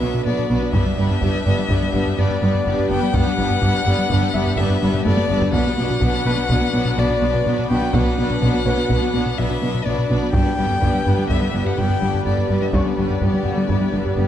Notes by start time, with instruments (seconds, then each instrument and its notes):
Already playing: analog synth pad D3 B3 F#4 B4, violin E5, grand piano F#5
0.01 double bass section B1, cello section B2, viola section F#3 B3, analog synth bass B3, violin section D4 B4, synth pluck F#4
0.14 analog synth bass B2, synth pluck B4
0.26 double bass section B1, cello section B2, analog synth bass B2, viola section F#3 B3, synth pluck B3, violin section D4 B4, violin D5
0.38 analog synth bass B2, synth pluck B4
0.50 double bass section B1, cello section B2, analog synth bass B2, viola section F#3 B3, synth pluck D4, violin section D4 B4
0.62 analog synth bass B3, synth pluck F#4
0.73 double bass section G1, cello section G2, analog synth bass G2, synth pluck G3, viola section G3 B3, analog synth pad B3 D4 G4 B4, violin section D4 B4, violin E5, taiko
0.86 analog synth bass G3, synth pluck D4
0.98 double bass section G1, cello section G2, analog synth bass G3, viola section G3 B3, synth pluck D4, violin section D4 B4
1.10 analog synth bass G2, synth pluck B3
1.21 double bass section G1, cello section G2, analog synth bass G2, synth pluck G3, viola section G3 B3, violin section D4 B4, taiko
1.34 analog synth bass G3, synth pluck D4
1.46 double bass section G1, cello section G2, analog synth bass G2, viola section G3 B3, violin section D4 B4, synth pluck G4
1.58 analog synth bass G3, synth pluck D4
1.70 double bass section G1, cello section G2, analog synth bass G2, viola section G3 B3, synth pluck G3, violin section D4 B4, taiko
1.82 analog synth bass G3, synth pluck D4
1.93 double bass section G1, cello section G2, viola section G3 B3, analog synth bass G3, violin section D4 B4, synth pluck D4
2.06 analog synth bass G2, synth pluck G4
2.18 double bass section G1, cello section G2, analog synth bass G2, synth pluck G3, viola section G3 B3, violin section D4 B4, violin D5
2.30 analog synth bass G2, synth pluck B3
2.42 double bass section G1, cello section G2, viola section G3 B3, analog synth bass G3, violin section D4 B4, synth pluck D4
2.55 analog synth bass G2, synth pluck G4
2.66 double bass section G1, cello section G2, analog synth bass G2, viola section G3 B3, synth pluck G3, violin section D4 B4
2.78 analog synth bass G2, synth pluck G4
2.90 double bass section G1, cello section G2, analog synth bass G2, viola section G3 B3, synth pluck B3, violin section D4 B4, violin G5
3.03 analog synth bass G3, synth pluck D4
3.14 double bass section G1, cello section G2, analog synth bass G2, synth pluck G3, viola section G3 B3, violin section D4 B4, violin F#5, taiko
3.26 analog synth bass G3, synth pluck D4
3.38 double bass section G1, cello section G2, analog synth bass G3, viola section G3 B3, synth pluck D4, violin section D4 B4
3.50 analog synth bass G2, synth pluck B3
3.62 double bass section G1, analog synth bass G2, cello section G2, synth pluck G3, viola section G3 B3, violin section D4 B4, taiko
3.74 analog synth bass G3, synth pluck D4
3.86 double bass section G1, analog synth bass G2, cello section G2, viola section G3 B3, violin section D4 B4, synth pluck G4
3.98 analog synth bass G3, synth pluck D4
4.10 double bass section G1, analog synth bass G2, cello section G2, synth pluck G3, viola section G3 B3, violin section D4 B4, taiko
4.22 analog synth bass G3, synth pluck D4
4.34 double bass section G1, cello section G2, viola section G3 B3, analog synth bass G3, synth pluck D4, violin section D4 B4, grand piano E5
4.45 analog synth bass G2, synth pluck G4
4.58 double bass section G1, cello section G2, analog synth bass G2, synth pluck G3, viola section G3 B3, violin section D4 B4, violin E5
4.70 analog synth bass G2, synth pluck B3
4.82 double bass section G1, cello section G2, viola section G3 B3, analog synth bass G3, synth pluck D4, violin section D4 B4
4.94 analog synth bass G2, synth pluck G4, taiko low-mid
5.05 double bass section G1, analog synth bass G2, cello section G2, viola section G3 B3, synth pluck G3, violin section D4 B4, grand piano A4, violin D5, taiko high
5.17 analog synth bass G2, synth pluck G4, taiko high
5.29 double bass section G1, analog synth bass G2, cello section G2, viola section G3 B3, synth pluck B3, violin section D4 B4, taiko mid
5.41 analog synth bass G3, synth pluck D4, taiko low
5.53 double bass section B1, analog synth bass B2, cello section B2, viola section F#3 B3, analog synth pad B3 D4 F#4 B4, synth pluck B3, violin section D4 B4, violin F#5, taiko
5.67 analog synth bass B3, synth pluck F#4
5.78 double bass section B1, cello section B2, viola section F#3 B3, analog synth bass B3, violin section D4 B4, synth pluck F#4
5.91 analog synth bass B2, synth pluck D4
6.01 double bass section B1, analog synth bass B2, cello section B2, viola section F#3 B3, synth pluck B3, violin section D4 B4, taiko
6.14 analog synth bass B3, synth pluck F#4
6.25 double bass section B1, analog synth bass B2, cello section B2, viola section F#3 B3, violin section D4 B4, synth pluck B4, grand piano B4
6.37 analog synth bass B3, synth pluck F#4
6.49 double bass section B1, analog synth bass B2, cello section B2, viola section F#3 B3, synth pluck B3, violin section D4 B4, taiko
6.61 analog synth bass B3, synth pluck F#4
6.74 double bass section B1, cello section B2, viola section F#3 B3, analog synth bass B3, violin section D4 B4, synth pluck F#4
6.85 analog synth bass B2, synth pluck B4
6.98 double bass section B1, cello section B2, analog synth bass B2, viola section F#3 B3, synth pluck B3, violin section D4 B4, violin D5
7.10 analog synth bass B2, synth pluck D4
7.21 double bass section B1, cello section B2, viola section F#3 B3, analog synth bass B3, violin section D4 B4, synth pluck F#4
7.34 analog synth bass B2, synth pluck B4
7.46 double bass section B1, cello section B2, analog synth bass B2, viola section F#3 B3, synth pluck B3, violin section D4 B4
7.58 analog synth bass B2, synth pluck B4
7.70 double bass section B1, analog synth bass B2, cello section B2, viola section F#3 B3, synth pluck D4, violin section D4 B4, violin G5
7.82 analog synth bass B3, synth pluck F#4
7.93 double bass section B1, analog synth bass B2, cello section B2, viola section F#3 B3, violin section D4 B4, violin F#5, taiko
8.06 analog synth bass B3, synth pluck F#4
8.18 double bass section B1, cello section B2, viola section F#3 B3, analog synth bass B3, violin section D4 B4, synth pluck F#4
8.30 analog synth bass B2, synth pluck D4
8.42 double bass section B1, cello section B2, analog synth bass B2, viola section F#3 B3, synth pluck B3, violin section D4 B4, taiko
8.54 analog synth bass B3, synth pluck F#4
8.65 double bass section B1, analog synth bass B2, cello section B2, viola section F#3 B3, violin section D4 B4, synth pluck B4, grand piano C#5
8.77 analog synth bass B3, synth pluck F#4
8.89 double bass section B1, analog synth bass B2, cello section B2, viola section F#3 B3, synth pluck B3, violin section D4 B4, taiko
9.02 analog synth bass B3, synth pluck F#4
9.14 double bass section B1, cello section B2, viola section F#3 B3, analog synth bass B3, violin section D4 B4
9.26 analog synth bass B2, synth pluck B4
9.38 double bass section B1, cello section B2, analog synth bass B2, viola section F#3 B3, synth pluck B3, violin section D4 B4, violin E5
9.50 analog synth bass B2, synth pluck D4
9.62 double bass section B1, cello section B2, viola section F#3 B3, analog synth bass B3, violin section D4 B4, synth pluck F#4
9.74 analog synth bass B2, synth pluck B4
9.85 double bass section B1, analog synth bass B2, cello section B2, viola section F#3 B3, synth pluck B3, violin section D4 B4, violin D5
9.98 analog synth bass B2, synth pluck B4
10.09 double bass section B1, analog synth bass B2, cello section B2, viola section F#3 B3, synth pluck D4, violin section D4 B4
10.22 analog synth bass B3, synth pluck F#4
10.33 double bass section G1, cello section G2, analog synth bass G2, analog synth pad D3 B3 G4 B4, synth pluck G3, viola section G3 B3, grand piano D4 D5, violin section D4 B4, violin G5, taiko
10.45 analog synth bass G3, synth pluck D4
10.58 double bass section G1, cello section G2, analog synth bass G3, viola section G3 B3, synth pluck D4, violin section D4 B4
10.70 analog synth bass G2, synth pluck B3
10.81 double bass section G1, cello section G2, analog synth bass G2, synth pluck G3, viola section G3 B3, violin section D4 B4, taiko
10.93 analog synth bass G3, synth pluck D4
11.05 double bass section G1, cello section G2, analog synth bass G2, viola section G3 B3, violin section D4 B4, synth pluck G4
11.18 analog synth bass G3, synth pluck D4
11.29 double bass section G1, cello section G2, analog synth bass G2, synth pluck G3, viola section G3 B3, violin section D4 B4, violin E5, taiko
11.41 analog synth bass G3, synth pluck D4
11.53 double bass section G1, cello section G2, viola section G3 B3, analog synth bass G3, synth pluck D4, violin section D4 B4
11.65 analog synth bass G2, synth pluck G4, violin F#5
11.77 double bass section G1, cello section G2, analog synth bass G2, synth pluck G3, viola section G3 B3, violin section D4 B4, violin G5
11.89 analog synth bass G2, synth pluck B3
12.01 double bass section G1, cello section G2, analog synth bass G3, viola section G3 B3, synth pluck D4, violin section D4 B4
12.13 analog synth bass G2, synth pluck G4
12.25 double bass section G1, cello section G2, analog synth bass G2, synth pluck G3, viola section G3 B3, violin section D4 B4, violin D5
12.37 analog synth bass G2, synth pluck G4
12.49 double bass section G1, cello section G2, analog synth bass G2, viola section G3 B3, synth pluck B3, violin section D4 B4
12.61 analog synth bass G3, synth pluck D4, violin E5
12.73 double bass section G1, cello section G2, analog synth bass G2, synth pluck G3, viola section G3 B3, grand piano C#4 C#6, violin section D4 B4, violin D5, taiko
12.86 analog synth bass G3, synth pluck D4
12.97 double bass section G1, cello section G2, viola section G3 B3, analog synth bass G3, synth pluck D4, violin section D4 B4
13.09 analog synth bass G2, synth pluck B3
13.21 double bass section G1, analog synth bass G2, cello section G2, synth pluck G3, viola section G3 B3, violin section G4, taiko
13.33 analog synth bass G3, synth pluck D4
13.45 double bass section G1, analog synth bass G2, cello section G2, viola section G3 B3, violin section F#4, synth pluck G4
13.58 analog synth bass G3, synth pluck D4
13.69 double bass section G1, analog synth bass G2, cello section G2, synth pluck G3, viola section G3 B3, violin section E4, taiko
13.81 analog synth bass G3, synth pluck D4
13.93 double bass section G1, cello section G2, analog synth bass G3, viola section G3 B3, synth pluck D4, violin section D4
14.05 analog synth bass G2, synth pluck G4
14.17 double bass section G1, cello section G2, analog synth bass G2, synth pluck G3, viola section G3 B3, violin section G4